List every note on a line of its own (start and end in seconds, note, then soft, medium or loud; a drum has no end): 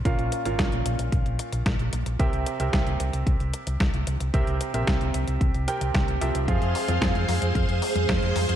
0.05 0.16 A#1 medium
0.05 0.42 A#2 medium
0.05 0.42 C#4 medium
0.05 0.42 F4 medium
0.05 0.42 A#4 medium
0.05 0.42 F5 loud
0.05 kick loud
0.05 closed hi-hat medium
0.19 0.29 A#1 medium
0.19 closed hi-hat soft
0.32 closed hi-hat medium
0.45 0.56 G#1 medium
0.45 2.16 A#2 medium
0.45 2.16 C#4 medium
0.45 2.16 F4 medium
0.45 2.16 A#4 medium
0.45 2.16 F5 medium
0.45 closed hi-hat medium
0.59 0.70 A#1 medium
0.59 kick loud
0.59 snare loud
0.59 closed hi-hat medium
0.72 0.83 A#1 medium
0.72 closed hi-hat soft
0.86 0.96 A#1 medium
0.86 closed hi-hat medium
0.99 1.10 A#1 medium
0.99 closed hi-hat medium
1.12 1.23 A#1 loud
1.12 kick loud
1.12 closed hi-hat medium
1.26 1.37 A#1 medium
1.26 closed hi-hat soft
1.39 closed hi-hat medium
1.53 1.63 A#1 medium
1.53 closed hi-hat medium
1.66 1.77 A#1 medium
1.66 kick loud
1.66 snare loud
1.66 closed hi-hat medium
1.79 1.90 A#1 medium
1.79 closed hi-hat soft
1.93 2.04 A#1 medium
1.93 closed hi-hat loud
2.06 2.17 A#1 medium
2.06 closed hi-hat medium
2.19 2.30 C2 medium
2.19 2.57 C3 medium
2.19 2.57 C4 medium
2.19 2.57 G4 medium
2.19 2.57 A#4 medium
2.19 2.57 E5 loud
2.19 kick loud
2.19 closed hi-hat medium
2.33 2.44 C2 medium
2.33 closed hi-hat soft
2.46 closed hi-hat medium
2.60 2.71 C2 medium
2.60 4.31 C3 medium
2.60 4.31 C4 medium
2.60 4.31 G4 medium
2.60 4.31 A#4 medium
2.60 4.31 E5 medium
2.60 closed hi-hat medium
2.73 2.84 C2 loud
2.73 kick loud
2.73 snare loud
2.73 closed hi-hat medium
2.87 2.97 C2 medium
2.87 closed hi-hat soft
3.00 3.11 C2 medium
3.00 closed hi-hat medium
3.13 3.24 C2 medium
3.13 closed hi-hat medium
3.27 3.37 C2 loud
3.27 kick loud
3.27 closed hi-hat medium
3.40 3.51 C2 medium
3.40 closed hi-hat soft
3.54 closed hi-hat medium
3.67 3.78 C2 medium
3.67 closed hi-hat medium
3.80 3.91 C2 loud
3.80 kick loud
3.80 snare loud
3.80 closed hi-hat medium
3.94 4.04 C2 medium
3.94 closed hi-hat soft
4.07 4.18 C2 medium
4.07 closed hi-hat medium
4.20 4.31 C2 medium
4.20 closed hi-hat medium
4.34 4.45 C2 loud
4.34 4.71 C3 medium
4.34 4.71 C4 medium
4.34 4.71 G4 medium
4.34 4.71 A#4 medium
4.34 4.71 E5 medium
4.34 kick loud
4.34 closed hi-hat medium
4.47 4.58 C2 medium
4.47 closed hi-hat soft
4.61 closed hi-hat medium
4.74 4.85 A#1 medium
4.74 5.65 C3 medium
4.74 5.65 C4 medium
4.74 5.65 G4 medium
4.74 5.65 A#4 medium
4.74 5.65 E5 medium
4.74 closed hi-hat medium
4.87 4.98 C2 loud
4.87 kick loud
4.87 snare loud
4.87 closed hi-hat medium
5.01 5.12 C2 medium
5.01 closed hi-hat soft
5.14 5.25 C2 medium
5.14 closed hi-hat medium
5.28 5.38 C2 medium
5.28 closed hi-hat soft
5.41 5.52 C2 loud
5.41 kick loud
5.41 closed hi-hat soft
5.54 5.65 C2 medium
5.54 closed hi-hat soft
5.68 6.18 C3 medium
5.68 6.18 C4 medium
5.68 6.18 G4 medium
5.68 6.18 A#4 medium
5.68 6.18 G5 loud
5.68 closed hi-hat medium
5.81 5.92 C2 medium
5.81 closed hi-hat medium
5.94 6.05 C2 loud
5.94 kick loud
5.94 snare loud
5.94 closed hi-hat medium
6.08 6.19 C2 medium
6.08 closed hi-hat soft
6.21 6.32 C2 medium
6.21 6.45 F3 medium
6.21 6.45 C4 medium
6.21 6.45 G4 medium
6.21 6.45 A#4 medium
6.21 6.45 E5 loud
6.21 closed hi-hat medium
6.35 6.45 C2 medium
6.35 closed hi-hat medium
6.48 6.59 F2 medium
6.48 6.85 F3 medium
6.48 6.85 C4 medium
6.48 6.85 F4 medium
6.48 8.56 G#4 medium
6.48 6.85 G#4 medium
6.48 8.56 C5 medium
6.48 8.56 F5 medium
6.48 6.85 F5 loud
6.48 8.56 C6 medium
6.48 kick loud
6.48 closed hi-hat soft
6.62 6.72 F2 medium
6.62 closed hi-hat soft
6.75 open hi-hat loud
6.88 6.99 F2 medium
6.88 8.56 F3 medium
6.88 8.56 C4 medium
6.88 8.56 F4 medium
6.88 8.56 G#4 medium
6.88 8.56 F5 medium
6.88 closed hi-hat medium
6.88 high tom medium
7.02 7.12 F2 medium
7.02 kick loud
7.02 snare loud
7.02 closed hi-hat soft
7.15 7.26 F2 medium
7.15 closed hi-hat soft
7.15 high tom medium
7.28 7.39 F2 medium
7.28 open hi-hat loud
7.42 7.53 F2 medium
7.42 closed hi-hat soft
7.55 7.66 F2 loud
7.55 kick loud
7.55 closed hi-hat soft
7.69 7.79 F2 medium
7.69 closed hi-hat soft
7.82 open hi-hat loud
7.95 8.06 F2 medium
7.95 closed hi-hat medium
7.95 high tom medium
8.09 8.20 F2 loud
8.09 kick loud
8.09 snare loud
8.09 closed hi-hat medium
8.22 8.33 F2 medium
8.22 closed hi-hat soft
8.36 8.46 F2 medium
8.36 open hi-hat loud
8.36 high tom medium
8.49 8.56 F2 medium
8.49 closed hi-hat medium